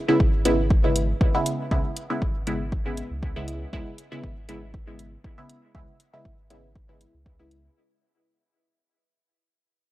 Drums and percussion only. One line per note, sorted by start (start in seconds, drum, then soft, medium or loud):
0.20 kick loud
0.45 closed hi-hat medium
0.70 kick loud
0.96 closed hi-hat medium
1.21 kick loud
1.46 closed hi-hat medium
1.71 kick loud
1.97 closed hi-hat medium
2.22 kick loud
2.47 closed hi-hat medium
2.72 kick loud
2.97 closed hi-hat medium
3.23 kick loud
3.48 closed hi-hat medium
3.73 kick loud
3.98 closed hi-hat medium
4.23 kick loud
4.49 closed hi-hat medium
4.74 kick loud
4.99 closed hi-hat medium
5.24 kick loud
5.50 closed hi-hat medium
5.75 kick loud
6.00 closed hi-hat medium
6.25 kick loud
6.50 closed hi-hat medium
6.76 kick loud
7.01 closed hi-hat medium
7.26 kick loud
7.51 closed hi-hat medium